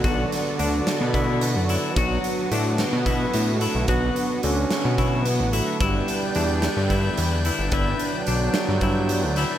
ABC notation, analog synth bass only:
X:1
M:7/8
L:1/16
Q:1/4=109
K:Bm
V:1 name="Analog synth bass" clef=bass
B,,,2 z2 D,,2 z B,,4 F,,2 z | B,,,2 z2 A,,3 B,,3 A,,3 B,,, | B,,,2 z2 D,,2 z B,,4 A,,,2 z | G,,,2 z2 E,,3 G,,3 E,,3 G,,, |
G,,,2 z2 B,,,2 z G,,4 D,,2 z |]